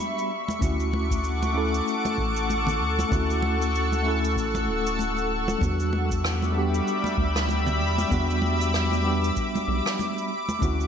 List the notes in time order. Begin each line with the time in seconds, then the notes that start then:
Already playing: G3 B3 D4 F#4 G4 E5 B5 C#6
0.19 cabasa
0.31 A4 F#5 D6
0.48 high conga, cabasa
0.59 D2 A3 C#4 E4, kick, low conga, cabasa
0.64 F#4
0.80 cabasa
0.93 high conga
1.11 kick, cabasa
1.24 cabasa
1.43 high conga, cabasa
1.52 A3 C#4 E4
1.58 A4
1.74 cabasa
1.88 cabasa
2.05 high conga, cabasa
2.18 A1, kick
2.36 cabasa
2.50 high conga, cabasa
2.67 low conga, cabasa
2.80 D2 E6
2.99 high conga, cabasa
3.09 D2 A3 C#4 E4, kick, low conga
3.13 F#4, cabasa
3.30 cabasa
3.42 high conga
3.62 cabasa
3.75 cabasa
3.92 high conga, cabasa
4.03 A3 C#4 E4
4.08 A4
4.24 cabasa
4.37 A1, kick, cabasa
4.55 high conga, cabasa
4.67 D1
4.86 cabasa
4.99 high conga, cabasa
5.18 cabasa
5.48 high conga, cabasa
5.58 E2 G3 B3 D4 E5 B5 D6, kick, low conga
5.63 F#4, cabasa
5.80 cabasa
5.93 high conga
6.11 kick, cabasa
6.24 cross-stick, cabasa
6.42 high conga, cabasa
6.52 G3 B3 D4
6.58 G4
6.74 cabasa
6.88 cabasa
7.04 high conga, cabasa
7.18 D2, kick
7.36 cross-stick, cabasa
7.49 high conga, cabasa
7.67 low conga, cabasa
7.80 E2
7.98 high conga, cabasa
8.08 E2 G3 B3 D4, kick, low conga, cabasa
8.13 F#4
8.30 cabasa
8.42 high conga
8.61 cabasa
8.74 cross-stick, cabasa
8.91 high conga, cabasa
9.02 G3 B3 D4
9.07 G4
9.24 cabasa
9.36 kick, cabasa
9.55 high conga, cabasa
9.68 B1
9.86 cross-stick, cabasa
9.99 high conga, cabasa
10.18 cabasa
10.30 A4 F#5 C#6
10.49 high conga, cabasa
10.59 D2 A3 C#4 E4, kick, low conga, cabasa
10.64 F#4
10.80 cabasa